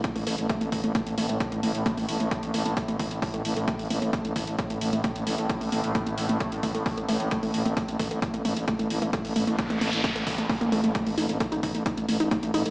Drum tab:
HH |xooxxxoxxxoxxxox|xooxxxoxxxoxoxox|xooxxxoxxxoxxxox|xooxxxoxxxoxoxox|
BD |o---o-o-o---o---|o---o---o-o-o---|o---o-o-o---o---|o---o---o-o-o---|

HH |xooxxxoxxxoxxxox|xooxxxoxxxoxoxox|xooxxxoxxxoxxxox|
BD |o---o-o-o---o---|o---o---o-o-o---|o---o-o-o---o---|